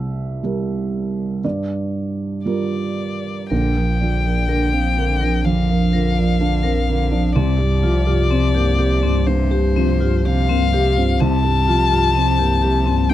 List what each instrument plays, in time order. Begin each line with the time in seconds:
Already playing: felt piano C2 E5
0.43 felt piano G3 G4 A#4
1.44 felt piano G2 D5
2.45 felt piano G3 F4 A#4, violin D5
3.50 sub bass A#1, felt piano A#1, cello D3, vibraphone A#4, violin G5
3.75 cello F3, felt piano A#4
4.00 cello D3, felt piano F3, vibraphone D5
4.25 cello F3, felt piano A#4, vibraphone D5
4.49 cello D3, felt piano D4, vibraphone A#4
4.73 cello F3, felt piano C4, vibraphone F5
4.97 cello D3, felt piano A#4, vibraphone F5
5.21 cello F3, felt piano D4, vibraphone A#4
5.44 felt piano F2, cello D3, violin F5, vibraphone G5
5.69 cello F3, felt piano A#4, vibraphone F5
5.93 cello D3, felt piano F3, vibraphone A#4
6.17 cello F3, felt piano A#4, vibraphone D5
6.40 cello D3, felt piano D4, vibraphone F5
6.63 cello F3, felt piano C4, vibraphone A#4
6.88 cello D3, felt piano A#4, vibraphone F5
7.12 cello F3, felt piano D4, vibraphone D5
7.36 felt piano C2, sub bass C2, cello C3, vibraphone C4, violin D5
7.58 cello G2, felt piano G4
7.83 cello C3, felt piano F3, vibraphone F4
8.07 cello G2, vibraphone F4, felt piano G4
8.31 cello C3, vibraphone C4, felt piano C4
8.54 cello G2, felt piano A#3, vibraphone G4
8.79 cello C3, vibraphone G4, felt piano G4
9.03 cello G2, vibraphone C4, felt piano C4
9.27 felt piano G2, cello C3, violin C5, vibraphone C5
9.51 cello G2, felt piano G4, vibraphone G4
9.76 cello C3, felt piano F3, vibraphone C4
10.00 cello G2, vibraphone F4, felt piano G4
10.25 cello C3, felt piano C4, vibraphone G4, violin F5
10.49 cello G2, felt piano A#3, vibraphone C4
10.73 cello C3, vibraphone G4, felt piano G4
10.96 cello G2, felt piano C4, vibraphone F4
11.20 sub bass C2, felt piano C2, cello C3, vibraphone C4, violin A5
11.44 cello G2, felt piano G4
11.67 cello C3, felt piano F3, vibraphone F4
11.91 cello G2, vibraphone F4, felt piano G4
12.14 cello C3, vibraphone C4, felt piano C4
12.39 cello G2, felt piano A#3, vibraphone G4
12.62 cello C3, vibraphone G4, felt piano G4
12.86 cello G2, vibraphone C4, felt piano C4
13.10 felt piano G2, vibraphone C5, violin G5